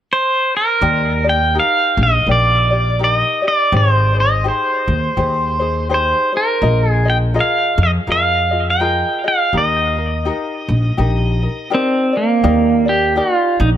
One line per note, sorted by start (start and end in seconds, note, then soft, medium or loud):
0.13 0.55 C5 medium
0.57 1.29 A#4 medium
0.81 1.57 D#2 medium
0.81 1.25 D#4 medium
0.81 1.24 G4 medium
0.81 1.24 A#4 medium
0.81 1.23 D5 medium
1.24 1.54 D#4 soft
1.24 1.54 G4 soft
1.24 1.54 D5 medium
1.29 1.58 G5 medium
1.54 2.27 D#4 medium
1.54 2.27 G4 medium
1.54 2.26 A#4 medium
1.60 2.01 F5 medium
1.97 2.17 A#1 medium
2.03 2.31 D#5 medium
2.27 3.21 A#1 medium
2.27 2.70 D#4 medium
2.27 2.70 G4 medium
2.27 2.70 A#4 soft
2.27 2.69 D5 medium
2.31 3.04 D5 medium
2.70 2.98 D#4 soft
2.70 2.99 G4 soft
2.70 3.00 D5 soft
2.99 3.43 D#4 medium
2.99 3.42 G4 medium
2.99 3.42 A#4 medium
3.04 3.15 D5 medium
3.15 3.46 D#5 medium
3.42 3.72 D#4 soft
3.42 3.71 G4 soft
3.42 3.72 D5 soft
3.48 3.73 D5 medium
3.72 4.47 G#1 medium
3.72 4.15 D#4 medium
3.72 4.15 G4 medium
3.72 4.14 G#4 medium
3.72 4.13 C5 medium
3.77 4.19 C5 medium
4.14 4.43 D#4 soft
4.14 4.44 G#4 soft
4.14 4.44 C5 soft
4.20 4.48 D#5 medium
4.44 5.17 D#4 medium
4.44 5.15 G4 medium
4.44 5.18 G#4 medium
4.44 5.17 C5 medium
4.48 5.88 C5 medium
4.88 5.07 D#2 medium
5.17 6.12 D#2 medium
5.17 5.60 D#4 medium
5.17 5.60 G4 medium
5.17 5.59 G#4 medium
5.17 5.58 C5 medium
5.59 5.89 D#4 soft
5.59 5.89 G#4 medium
5.59 5.89 C5 medium
5.89 6.33 D#4 medium
5.89 6.33 G4 medium
5.89 6.33 G#4 medium
5.89 6.31 C5 medium
5.94 6.32 C5 medium
6.33 6.62 D#4 soft
6.33 6.61 G#4 soft
6.33 6.62 C5 soft
6.37 6.91 A#4 medium
6.61 7.37 A#1 medium
6.61 7.05 F4 medium
6.61 7.05 G#4 medium
6.61 7.05 A#4 medium
6.61 7.04 D#5 medium
6.91 7.10 G#4 medium
7.05 7.33 F4 soft
7.05 7.34 G#4 soft
7.05 7.35 D#5 medium
7.10 7.17 G5 medium
7.34 8.07 F4 medium
7.34 8.07 G#4 medium
7.34 8.07 A#4 medium
7.34 8.09 D#5 medium
7.40 7.82 F5 medium
7.78 7.97 F2 loud
7.83 7.91 D#5 medium
8.07 9.02 F2 medium
8.07 8.51 F4 medium
8.07 8.51 G#4 medium
8.07 8.50 A#4 soft
8.07 8.50 D#5 medium
8.12 8.69 F5 medium
8.51 8.79 F4 soft
8.51 8.80 G#4 soft
8.51 8.80 D#5 soft
8.70 9.28 G5 medium
8.80 9.24 F4 medium
8.80 9.24 G#4 medium
8.80 9.23 A#4 medium
8.80 9.23 D#5 medium
9.24 9.53 F4 soft
9.24 9.53 G#4 soft
9.24 9.53 D#5 soft
9.24 9.56 F5 medium
9.53 10.28 D#2 medium
9.53 9.96 D#4 medium
9.53 9.96 G4 medium
9.53 9.96 A#4 medium
9.57 11.69 D#5 medium
9.97 10.24 D#4 soft
9.97 10.25 A#4 soft
10.25 10.98 D#4 medium
10.25 10.97 G4 medium
10.25 10.97 A#4 medium
10.68 10.88 A#1 medium
10.97 11.45 A#1 medium
10.97 11.41 D#4 medium
10.97 11.41 G4 medium
10.97 11.41 A#4 medium
11.42 11.70 D#4 soft
11.42 11.70 A#4 soft
11.70 12.14 D#4 medium
11.70 12.14 G4 medium
11.70 12.13 A#4 medium
11.70 12.11 D5 medium
11.74 12.17 C4 medium
12.13 12.42 D#4 soft
12.13 12.43 A#4 soft
12.13 12.43 D5 soft
12.17 12.90 A#3 medium
12.43 13.19 D#2 medium
12.43 12.87 D#4 medium
12.43 12.87 G4 medium
12.43 12.86 A#4 medium
12.43 12.84 D5 medium
12.86 13.15 D#4 soft
12.86 13.17 G4 medium
12.86 13.15 A#4 soft
12.86 13.16 D5 soft
13.15 13.77 D#4 medium
13.15 13.35 F#4 medium
13.15 13.77 G4 medium
13.15 13.77 A#4 medium
13.15 13.77 D5 medium
13.35 13.61 F4 medium
13.60 13.77 A#1 loud
13.60 13.69 D#4 medium